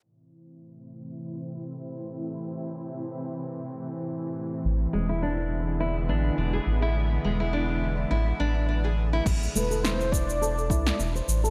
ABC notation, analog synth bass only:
X:1
M:4/4
L:1/8
Q:"Swing 16ths" 1/4=104
K:Am
V:1 name="Analog synth bass" clef=bass
z8 | z8 | A,,, E,,,4 A,,, E,,, A,,,- | A,,, E,,,3 A,,, A,,,3 |
A,,, E,,,4 C,, E,,, A,,, |]